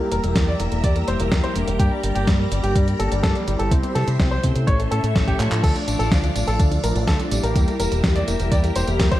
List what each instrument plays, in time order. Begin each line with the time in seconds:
Already playing: string machine G4 A#4 E5 A#5
0.00 grand piano A#3
0.12 fingered electric bass E1, analog polysynth G3 A#3 E4 G4, grand piano A#4, closed hi-hat
0.24 fingered electric bass E1, grand piano A#3, closed hi-hat
0.36 fingered electric bass E2, grand piano A#3, kick, snare, closed hi-hat
0.48 grand piano D5
0.60 fingered electric bass E1, analog polysynth G3 A#3 E4 G4, grand piano A#3, closed hi-hat
0.72 fingered electric bass E1, grand piano A#3, closed hi-hat
0.84 fingered electric bass E2, grand piano D5, kick, closed hi-hat
0.96 grand piano A#3, closed hi-hat
1.08 fingered electric bass E1, analog polysynth G3 A#3 E4 G4, grand piano C5, closed hi-hat
1.20 fingered electric bass E1, grand piano A#3, closed hi-hat
1.32 fingered electric bass E2, grand piano A#3, kick, snare, closed hi-hat
1.44 grand piano C5, closed hi-hat
1.55 fingered electric bass E1, analog polysynth G3 A#3 D4 G4, grand piano A#3, closed hi-hat
1.67 fingered electric bass E1, grand piano A#3, closed hi-hat
1.79 fingered electric bass G2, grand piano G4, string machine D5, kick, closed hi-hat
1.92 grand piano G3
2.03 fingered electric bass G1, grand piano G3, analog polysynth G3 A#3 D4 G4, closed hi-hat
2.15 fingered electric bass G1, grand piano G4, closed hi-hat
2.27 fingered electric bass G2, grand piano G3, kick, snare, closed hi-hat
2.39 grand piano G3
2.52 fingered electric bass G1, grand piano G3, analog polysynth G3 A#3 D4 G4, closed hi-hat
2.63 fingered electric bass G1, grand piano G4, closed hi-hat
2.76 fingered electric bass G2, grand piano G3, kick, closed hi-hat
2.87 grand piano G3, closed hi-hat
2.99 fingered electric bass G1, analog polysynth G3 A#3 D4 G4, grand piano A4, closed hi-hat
3.11 fingered electric bass G1, grand piano G3, closed hi-hat
3.23 fingered electric bass G2, grand piano A4, kick, snare, closed hi-hat
3.35 grand piano G3, closed hi-hat
3.47 fingered electric bass G1, grand piano G3, analog polysynth G3 C4 E4 G4, closed hi-hat
3.59 fingered electric bass G1, grand piano A4, closed hi-hat
3.71 fingered electric bass C2, grand piano C4, string machine C5 E5 C6, kick, closed hi-hat
3.83 grand piano C4, closed hi-hat
3.95 fingered electric bass C3, analog polysynth G3 C4 E4 G4, grand piano A4, snare, closed hi-hat
4.07 fingered electric bass C3, grand piano C4, closed hi-hat
4.19 fingered electric bass C2, grand piano C4, kick, snare, closed hi-hat
4.31 grand piano C5
4.43 fingered electric bass C3, analog polysynth A3 C#4 E4 A4, grand piano C4, kick, closed hi-hat
4.55 fingered electric bass C3, grand piano C4, closed hi-hat
4.67 fingered electric bass A1, string machine A4 C#5 E5 C#6, grand piano C#5, kick, closed hi-hat
4.79 grand piano A3, closed hi-hat
4.91 fingered electric bass A2, analog polysynth A3 C#4 E4 A4, grand piano A4, closed hi-hat
5.03 fingered electric bass A2, grand piano A3, closed hi-hat
5.15 fingered electric bass A1, grand piano A3, kick, snare, closed hi-hat
5.28 grand piano G4, kick, closed hi-hat
5.40 fingered electric bass A2, analog polysynth F3 A3 D4 F4, grand piano A3, clap, closed hi-hat
5.52 fingered electric bass A2, grand piano A3, clap, closed hi-hat
5.63 fingered electric bass D2, grand piano A4, string machine A4 D5 F5 D6, kick, closed hi-hat, tambourine, crash
5.76 grand piano D4, closed hi-hat, tambourine
5.87 fingered electric bass A1, analog polysynth F3 A3 D4 F4, grand piano D4, closed hi-hat, tambourine
5.99 fingered electric bass A1, grand piano A4, closed hi-hat, tambourine
6.11 fingered electric bass D2, grand piano D4, kick, snare, closed hi-hat, tambourine
6.23 grand piano D4, closed hi-hat, tambourine
6.35 fingered electric bass A1, analog polysynth F3 A3 D4 F4, grand piano D4, closed hi-hat, tambourine
6.47 fingered electric bass A1, grand piano A4, closed hi-hat, tambourine
6.59 fingered electric bass D2, grand piano D4, kick, closed hi-hat, tambourine
6.71 grand piano D4, closed hi-hat, tambourine
6.83 fingered electric bass A1, analog polysynth F3 A3 D4 F4, grand piano A#4, closed hi-hat, tambourine
6.95 fingered electric bass A1, grand piano D4, closed hi-hat, tambourine
7.08 fingered electric bass D2, grand piano A4, kick, snare, closed hi-hat, tambourine
7.20 grand piano D4, closed hi-hat, tambourine
7.32 fingered electric bass A1, analog polysynth G3 A#3 E4 G4, grand piano D4, closed hi-hat, tambourine
7.43 fingered electric bass A1, grand piano A#4, closed hi-hat, tambourine
7.56 fingered electric bass E2, grand piano A#3, string machine G4 A#4 E5 A#5, kick, closed hi-hat, tambourine
7.67 grand piano A#3, closed hi-hat, tambourine
7.80 fingered electric bass E1, analog polysynth G3 A#3 E4 G4, grand piano A#4, closed hi-hat, tambourine
7.91 fingered electric bass E1, grand piano A#3, closed hi-hat, tambourine
8.04 fingered electric bass E2, grand piano A#3, kick, snare, closed hi-hat, tambourine
8.15 grand piano D5, closed hi-hat, tambourine
8.28 fingered electric bass E1, analog polysynth G3 A#3 E4 G4, grand piano A#3, closed hi-hat, tambourine
8.40 fingered electric bass E1, grand piano A#3, closed hi-hat, tambourine
8.51 fingered electric bass E2, grand piano D5, kick, closed hi-hat, tambourine
8.64 grand piano A#3, closed hi-hat, tambourine
8.76 fingered electric bass E1, analog polysynth G3 A#3 E4 G4, grand piano C5, closed hi-hat, tambourine
8.87 fingered electric bass E1, grand piano A#3, closed hi-hat, tambourine
9.00 fingered electric bass E2, grand piano A#3, kick, snare, closed hi-hat, tambourine
9.11 grand piano C5, kick, closed hi-hat, tambourine